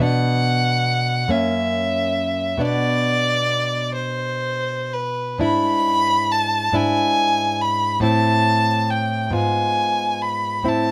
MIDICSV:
0, 0, Header, 1, 3, 480
1, 0, Start_track
1, 0, Tempo, 864553
1, 14, Time_signature, 6, 3, 24, 8
1, 1934, Tempo, 931677
1, 2414, Tempo, 1003344
1, 2894, Tempo, 882353
1, 3854, Tempo, 855920
1, 4814, Tempo, 887574
1, 5906, End_track
2, 0, Start_track
2, 0, Title_t, "Violin"
2, 0, Program_c, 0, 40
2, 19, Note_on_c, 0, 78, 104
2, 726, Note_on_c, 0, 76, 103
2, 735, Note_off_c, 0, 78, 0
2, 1451, Note_on_c, 0, 74, 120
2, 1459, Note_off_c, 0, 76, 0
2, 2167, Note_off_c, 0, 74, 0
2, 2170, Note_on_c, 0, 72, 105
2, 2660, Note_on_c, 0, 71, 91
2, 2667, Note_off_c, 0, 72, 0
2, 2890, Note_off_c, 0, 71, 0
2, 2892, Note_on_c, 0, 83, 127
2, 3381, Note_on_c, 0, 81, 107
2, 3390, Note_off_c, 0, 83, 0
2, 3620, Note_on_c, 0, 80, 118
2, 3628, Note_off_c, 0, 81, 0
2, 4095, Note_on_c, 0, 83, 100
2, 4103, Note_off_c, 0, 80, 0
2, 4323, Note_off_c, 0, 83, 0
2, 4327, Note_on_c, 0, 81, 117
2, 4816, Note_on_c, 0, 79, 94
2, 4824, Note_off_c, 0, 81, 0
2, 5055, Note_off_c, 0, 79, 0
2, 5057, Note_on_c, 0, 80, 103
2, 5529, Note_on_c, 0, 83, 94
2, 5537, Note_off_c, 0, 80, 0
2, 5778, Note_on_c, 0, 81, 110
2, 5786, Note_off_c, 0, 83, 0
2, 5906, Note_off_c, 0, 81, 0
2, 5906, End_track
3, 0, Start_track
3, 0, Title_t, "Nylon-string guitar"
3, 0, Program_c, 1, 24
3, 0, Note_on_c, 1, 47, 69
3, 1, Note_on_c, 1, 59, 55
3, 8, Note_on_c, 1, 62, 57
3, 697, Note_off_c, 1, 47, 0
3, 700, Note_off_c, 1, 59, 0
3, 704, Note_off_c, 1, 62, 0
3, 711, Note_on_c, 1, 42, 70
3, 718, Note_on_c, 1, 58, 62
3, 723, Note_on_c, 1, 61, 61
3, 1418, Note_off_c, 1, 42, 0
3, 1421, Note_off_c, 1, 58, 0
3, 1424, Note_off_c, 1, 61, 0
3, 1430, Note_on_c, 1, 47, 72
3, 1437, Note_on_c, 1, 59, 61
3, 1443, Note_on_c, 1, 62, 62
3, 2868, Note_off_c, 1, 47, 0
3, 2871, Note_off_c, 1, 59, 0
3, 2874, Note_off_c, 1, 62, 0
3, 2877, Note_on_c, 1, 44, 75
3, 2883, Note_on_c, 1, 62, 64
3, 2889, Note_on_c, 1, 64, 67
3, 3588, Note_off_c, 1, 44, 0
3, 3591, Note_off_c, 1, 62, 0
3, 3595, Note_off_c, 1, 64, 0
3, 3604, Note_on_c, 1, 44, 77
3, 3610, Note_on_c, 1, 62, 64
3, 3615, Note_on_c, 1, 64, 65
3, 4301, Note_off_c, 1, 44, 0
3, 4305, Note_off_c, 1, 62, 0
3, 4307, Note_off_c, 1, 64, 0
3, 4313, Note_on_c, 1, 45, 72
3, 4322, Note_on_c, 1, 60, 57
3, 4328, Note_on_c, 1, 64, 59
3, 5025, Note_off_c, 1, 45, 0
3, 5029, Note_off_c, 1, 60, 0
3, 5032, Note_off_c, 1, 64, 0
3, 5035, Note_on_c, 1, 44, 71
3, 5042, Note_on_c, 1, 59, 59
3, 5049, Note_on_c, 1, 65, 58
3, 5741, Note_off_c, 1, 44, 0
3, 5744, Note_off_c, 1, 59, 0
3, 5748, Note_off_c, 1, 65, 0
3, 5752, Note_on_c, 1, 45, 67
3, 5760, Note_on_c, 1, 60, 50
3, 5766, Note_on_c, 1, 64, 49
3, 5906, Note_off_c, 1, 45, 0
3, 5906, Note_off_c, 1, 60, 0
3, 5906, Note_off_c, 1, 64, 0
3, 5906, End_track
0, 0, End_of_file